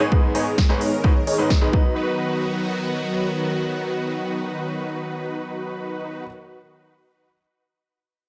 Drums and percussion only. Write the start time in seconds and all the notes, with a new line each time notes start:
0.12 kick
0.35 open hi-hat
0.58 kick, snare
0.70 snare
0.81 open hi-hat
1.04 kick
1.27 open hi-hat
1.50 kick, snare
1.73 kick